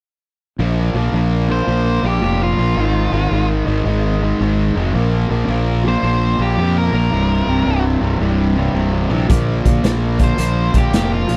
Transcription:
0.59 0.90 A#1 medium
0.59 0.93 A#2 medium
0.59 0.95 F3 medium
0.59 0.95 A#3 medium
0.94 1.11 A#1 medium
0.94 1.12 A#2 medium
0.94 1.13 F3 medium
0.94 1.14 A#3 medium
1.12 1.60 A#1 medium
1.12 1.48 A#2 medium
1.12 1.49 F3 medium
1.12 1.49 A#3 medium
1.49 1.66 A#2 medium
1.49 1.67 F3 medium
1.49 1.67 A#3 medium
1.49 2.04 C5 medium
1.67 1.99 A#1 medium
1.67 2.01 A#2 medium
1.67 2.02 F3 medium
1.67 2.03 A#3 loud
2.02 2.20 A#1 medium
2.02 2.21 A#2 medium
2.02 2.21 F3 medium
2.02 2.22 A#3 medium
2.02 2.40 G4 medium
2.22 2.53 F1 medium
2.22 2.57 A#2 medium
2.22 2.58 F3 medium
2.22 2.58 A#3 medium
2.43 3.47 F4 medium
2.58 2.74 A#1 medium
2.58 2.76 A#2 medium
2.58 2.76 F3 medium
2.58 2.76 A#3 medium
2.77 3.08 G#1 medium
2.77 3.12 G#2 medium
2.77 3.12 D#3 medium
2.77 3.13 G#3 medium
3.12 3.29 G#1 medium
3.12 3.30 G#2 medium
3.12 3.31 D#3 medium
3.12 3.32 G#3 medium
3.31 3.62 G#1 medium
3.31 3.66 G#2 medium
3.31 3.66 D#3 medium
3.31 3.67 G#3 medium
3.67 3.83 G#1 medium
3.67 3.84 G#2 medium
3.67 3.85 D#3 medium
3.67 3.86 G#3 medium
3.85 4.32 G#1 medium
3.85 4.20 G#2 medium
3.85 4.21 D#3 medium
3.85 4.22 G#3 medium
4.22 4.39 G#2 medium
4.22 4.39 D#3 medium
4.22 4.40 G#3 loud
4.40 4.71 G#1 medium
4.40 4.75 G#2 medium
4.40 4.75 D#3 medium
4.40 4.76 G#3 medium
4.76 4.92 F1 medium
4.76 4.93 G#2 medium
4.76 4.94 D#3 medium
4.76 4.94 G#3 medium
4.93 5.25 A#1 medium
4.93 5.29 A#2 medium
4.93 5.29 F3 loud
4.93 5.30 A#3 medium
5.30 5.46 A#1 medium
5.30 5.47 A#2 medium
5.30 5.48 F3 medium
5.30 5.49 A#3 medium
5.48 5.95 A#1 medium
5.48 5.83 A#2 medium
5.48 5.83 F3 medium
5.48 5.84 A#3 medium
5.84 6.01 A#2 medium
5.84 6.02 F3 medium
5.84 6.03 A#3 medium
5.88 6.40 C5 medium
6.03 6.34 A#1 medium
6.03 6.38 A#2 medium
6.03 6.38 F3 loud
6.03 6.39 A#3 medium
6.39 6.55 A#1 medium
6.39 6.56 A#2 medium
6.39 6.58 F3 medium
6.39 6.58 A#3 medium
6.39 6.76 G4 loud
6.58 6.89 F2 medium
6.58 6.92 A#2 medium
6.58 6.93 F3 medium
6.58 6.94 A#3 medium
6.78 7.83 A#4 medium
6.93 7.09 A#1 medium
6.93 7.11 A#2 medium
6.93 7.12 F3 medium
6.93 7.12 A#3 medium
7.11 7.43 C1 medium
7.11 7.46 C2 medium
7.11 7.47 G2 medium
7.11 7.47 C3 loud
7.47 7.64 C1 medium
7.47 7.64 C2 medium
7.47 7.65 G2 medium
7.47 7.66 C3 medium
7.65 7.97 C1 medium
7.65 7.99 C2 medium
7.65 8.01 G2 medium
7.65 8.01 C3 medium
8.01 8.18 C1 medium
8.01 8.19 C2 medium
8.01 8.19 G2 medium
8.01 8.20 C3 medium
8.20 8.68 C1 medium
8.20 8.55 C2 medium
8.20 8.56 G2 medium
8.20 8.56 C3 medium
8.56 8.73 C2 medium
8.56 8.74 G2 medium
8.56 8.74 C3 medium
8.74 9.06 C1 medium
8.74 9.09 C2 medium
8.74 9.09 G2 medium
8.74 9.10 C3 medium
9.10 9.27 A#1 medium
9.10 9.28 C2 medium
9.10 9.29 G2 medium
9.10 9.29 C3 medium
9.28 9.61 A#1 medium
9.28 9.63 A#2 medium
9.28 9.65 F3 medium
9.28 9.65 A#3 medium
9.28 kick medium
9.28 closed hi-hat medium
9.65 9.82 A#1 medium
9.65 9.82 A#2 medium
9.65 9.83 F3 medium
9.65 9.84 A#3 medium
9.65 kick medium
9.65 closed hi-hat medium
9.83 10.31 A#1 medium
9.83 10.18 A#2 medium
9.83 10.18 F3 medium
9.83 10.19 A#3 medium
9.83 snare loud
9.83 closed hi-hat medium
10.19 10.36 A#2 medium
10.19 10.37 F3 medium
10.19 10.38 A#3 medium
10.19 kick medium
10.19 closed hi-hat medium
10.24 10.75 C5 medium
10.37 10.70 A#1 medium
10.37 10.72 A#2 medium
10.37 10.73 F3 medium
10.37 10.74 A#3 loud
10.37 closed hi-hat medium
10.73 10.91 A#1 medium
10.73 10.91 A#2 medium
10.73 10.92 F3 medium
10.73 10.92 A#3 medium
10.73 kick medium
10.73 closed hi-hat medium
10.78 11.12 G4 medium
10.93 11.24 F1 medium
10.93 11.27 A#2 medium
10.93 11.28 F3 medium
10.93 11.29 A#3 medium
10.93 snare loud
10.93 closed hi-hat medium
11.14 11.37 F4 medium
11.28 11.37 A#1 medium
11.28 11.37 A#2 medium
11.28 11.37 F3 medium
11.28 11.37 A#3 medium
11.28 closed hi-hat medium

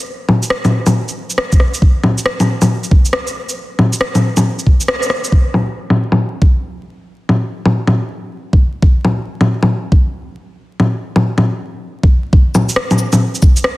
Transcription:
0.29 low bongo soft
0.43 shaker medium
0.50 cross-stick loud
0.65 low bongo medium
0.65 shaker soft
0.86 low bongo medium
0.86 shaker medium
1.08 shaker soft
1.30 shaker medium
1.38 cross-stick loud
1.52 kick loud
1.52 shaker soft
1.60 cross-stick medium
1.74 shaker medium
1.82 kick loud
2.03 low bongo medium
2.18 shaker medium
2.26 cross-stick loud
2.40 low bongo medium
2.40 shaker soft
2.62 low bongo medium
2.62 shaker medium
2.84 shaker soft
2.91 kick loud
3.05 shaker medium
3.13 cross-stick loud
3.27 shaker soft
3.49 shaker medium
3.79 low bongo medium
3.93 shaker medium
4.01 cross-stick loud
4.15 low bongo medium
4.15 shaker soft
4.37 low bongo medium
4.37 shaker medium
4.59 shaker soft
4.67 kick medium
4.81 shaker medium
4.88 cross-stick loud
5.03 shaker soft
5.10 cross-stick medium
5.25 shaker medium
5.32 kick loud
5.54 low bongo soft
5.90 low bongo medium
6.12 low bongo medium
6.42 kick medium
7.29 low bongo soft
7.65 low bongo medium
7.87 low bongo medium
8.53 kick loud
8.82 kick loud
9.05 low bongo soft
9.41 low bongo medium
9.63 low bongo medium
9.92 kick loud
10.80 low bongo soft
11.16 low bongo medium
11.38 low bongo medium
12.03 kick loud
12.33 kick loud
12.55 low bongo medium
12.55 cabasa medium
12.69 shaker medium
12.76 cross-stick loud
12.91 low bongo medium
12.91 shaker soft
12.98 cabasa medium
13.13 low bongo medium
13.13 shaker medium
13.35 shaker soft
13.42 kick loud
13.42 cabasa medium
13.57 shaker medium
13.64 cross-stick loud

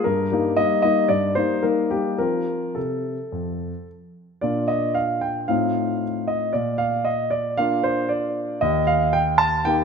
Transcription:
0.04 0.30 G2 soft
0.04 0.57 A#4 medium
0.32 0.55 G3 soft
0.32 0.56 A#3 soft
0.32 0.56 D#4 soft
0.57 0.81 G3 soft
0.57 0.81 A#3 soft
0.57 0.81 D#4 soft
0.57 0.81 D#5 medium
0.82 1.07 G3 soft
0.82 1.08 A#3 soft
0.82 1.08 D#4 soft
0.82 1.09 D#5 medium
1.08 1.36 G2 soft
1.08 1.36 D5 medium
1.35 1.61 G3 soft
1.35 1.61 A#3 soft
1.35 1.62 D#4 soft
1.35 1.63 C5 medium
1.63 1.89 G3 soft
1.63 1.89 A#3 soft
1.63 1.89 D#4 soft
1.63 1.91 A#4 medium
1.91 2.17 G3 soft
1.91 2.17 A#3 soft
1.91 2.17 D#4 soft
1.91 2.19 G4 soft
2.18 2.59 F3 soft
2.18 2.65 C4 soft
2.18 2.65 F4 soft
2.18 2.76 A#4 medium
2.75 3.15 C3 soft
2.75 3.87 A4 soft
3.32 3.71 F2 soft
4.41 5.46 A#2 soft
4.41 5.45 A#3 soft
4.41 5.45 D4 soft
4.41 5.46 F4 soft
4.41 4.69 D5 medium
4.68 4.95 D#5 medium
4.95 5.22 F5 medium
5.21 5.49 G5 medium
5.48 6.51 A2 soft
5.48 6.50 C4 soft
5.48 6.51 D#4 soft
5.48 6.51 F4 soft
5.48 6.28 F5 medium
6.28 6.54 D#5 medium
6.53 8.58 A#2 soft
6.53 6.79 D5 medium
6.78 7.05 F5 medium
7.05 7.32 D#5 medium
7.30 7.57 D5 medium
7.57 8.58 A#3 soft
7.57 8.58 D4 soft
7.57 8.58 F4 soft
7.57 7.84 F5 medium
7.84 8.10 C5 medium
8.09 8.61 D5 medium
8.61 9.84 D#2 medium
8.61 8.87 D#5 medium
8.87 9.13 F5 medium
9.13 9.39 G5 medium
9.38 9.65 A5 medium
9.65 9.84 A#3 soft
9.65 9.84 D#4 soft
9.65 9.84 G4 soft
9.65 9.84 G5 medium

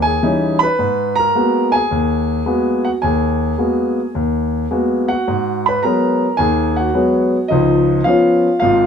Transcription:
0.00 0.16 D#2 medium
0.00 0.56 G#5 medium
0.06 0.58 G#4 medium
0.23 0.63 E3 soft
0.23 0.63 G3 soft
0.23 0.63 C#4 soft
0.23 0.63 D#4 medium
0.59 1.18 B5 medium
0.63 1.14 B4 medium
0.79 1.28 G#2 medium
1.16 1.70 A#4 medium
1.16 1.74 A#5 loud
1.35 1.75 G#3 medium
1.35 1.75 A#3 soft
1.35 1.75 B3 soft
1.35 1.76 F#4 medium
1.72 2.82 G#4 medium
1.72 2.81 G#5 medium
1.91 2.40 D#2 medium
2.46 2.87 G#3 medium
2.46 2.87 A#3 soft
2.46 2.87 B3 soft
2.46 2.86 F#4 medium
2.85 2.92 F#4 medium
2.85 2.90 F#5 medium
3.02 3.52 D#2 medium
3.02 4.12 G#4 medium
3.02 4.10 G#5 medium
3.58 3.99 G#3 soft
3.58 3.99 A#3 soft
3.58 3.99 B3 soft
3.58 3.99 F#4 medium
4.15 4.64 D#2 medium
4.71 5.11 G#3 medium
4.71 5.11 A#3 soft
4.71 5.11 B3 soft
4.71 5.09 F#4 medium
5.08 5.62 F#4 medium
5.08 5.67 F#5 medium
5.28 5.76 G#2 medium
5.66 5.83 B4 medium
5.66 5.82 B5 medium
5.83 6.24 F#3 medium
5.83 6.24 G#3 soft
5.83 6.24 B3 medium
5.83 6.36 A#4 medium
5.83 6.40 A#5 medium
6.37 6.88 D#2 medium
6.37 6.87 D#3 medium
6.37 6.76 G#4 medium
6.37 6.78 G#5 medium
6.76 7.48 F#4 medium
6.76 7.46 F#5 medium
6.94 7.35 F#3 medium
6.94 7.35 G#3 medium
6.94 7.35 B3 medium
7.48 7.99 C#2 medium
7.48 7.99 F3 medium
7.48 8.03 D#4 medium
7.48 8.07 D#5 medium
8.04 8.46 F3 medium
8.04 8.47 B3 soft
8.04 8.47 C#4 medium
8.04 8.60 F4 medium
8.04 8.57 F5 medium
8.60 8.86 G#1 medium
8.60 8.86 G#2 medium
8.60 8.86 F5 medium
8.64 8.86 F4 medium

